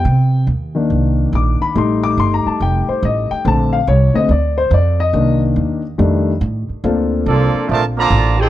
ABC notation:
X:1
M:4/4
L:1/8
Q:"Swing" 1/4=142
K:Bb
V:1 name="Trumpet section"
z8 | z8 | z8 | z8 |
z2 [B,FAd]2 [FBda] [Fdab]2 [EAcg] |]
V:2 name="Grand piano"
g2 z4 d' _c' | c' d' (3c' b a g c e g | a f _d e =d c d e- | e z6 z |
[B,CDFA]4- [B,CDFA] z3 |]
V:3 name="Grand piano"
z3 [E,B,D]4- [E,B,D] | [G,A,E]8 | [D,A,C] z2 [D,A,C] z4 | [E,B,D]3 z [E,G,A,D] z3 |
z8 |]
V:4 name="Saxophone section"
z8 | z8 | z8 | z8 |
z6 z [F,CE_A] |]
V:5 name="Trombone section" clef=bass
z8 | z8 | z8 | z8 |
z2 [F,DA]2 [D,F,A,] [D,F,B,]2 G |]
V:6 name="Upright bass" clef=bass
C,2 E,,2 C,,2 B,,, z | A,,,2 G,,, z F,,, z A,,, z | B,,,2 C,, z D,,2 F,,2 | C,,2 E,,2 F,,2 A,, z |
D,,2 C,, z B,,,2 A,,,2 |]